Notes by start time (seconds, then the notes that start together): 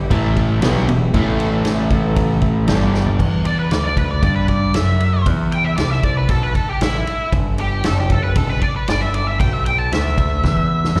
0.09 A1 A2 E3 A3 E4 A4, kick, ride
0.35 E3 A3 E4 A4, kick, ride
0.62 B1 B2 F#3 G3 B3 E4 G4, snare, ride
0.88 E1 E2 B2 G3 B3 E4 G4, ride
1.12 A1 A2 E3 A3 E4 A4, kick, ride
1.38 E3 A3 E4 A4, ride
1.65 E3 A3 E4 A4, snare, ride
1.90 E3 A3 E4 A4, kick, ride
2.16 E3 A3 E4 A4, kick, ride
2.41 E3 A3 E4 A4, kick, ride
2.68 G1 G2 D3 G3 D4 G4 D5, snare, ride
2.94 G3 D4 G4 D5, snare
3.06 floor tom
3.19 E2, kick, crash
3.45 D5, ride
3.59 B4
3.71 D2 D5, snare, ride
3.85 D5
3.97 B4, kick, ride
4.11 D5
4.23 G2 D5, kick, ride
4.36 B4
4.48 D5, kick, ride
4.74 F#2 E5, snare, ride
5.00 ride
5.26 E2, kick, ride
5.52 G5, ride
5.64 E5
5.77 C2 D5, snare, ride
5.90 E5
6.03 D5, kick, ride
6.17 B4
6.29 B1 A4, kick, ride
6.43 B4
6.55 A4, muted picked electric bass stroke, kick, ride
6.69 G4
6.81 A1 E4, snare, ride
7.07 muted picked electric bass stroke, ride
7.33 G1, kick, ride
7.58 G4, ride
7.84 F#1 A4, snare, ride
8.00 G4
8.10 A4, kick, ride
8.24 B4
8.35 E1 A4, kick, ride
8.49 B4
8.61 D5, muted picked electric bass stroke, kick, ride
8.76 B4
8.88 G1 D5, snare, ride
9.01 E5
9.14 D5, ride
9.27 E5
9.40 B1 G5, kick, ride
9.53 E5
9.65 G5, ride
9.78 A5
9.92 D2 E5, snare, ride
10.18 kick, ride
10.44 E2, kick, snare
10.57 kick
10.85 snare
10.96 F#2, snare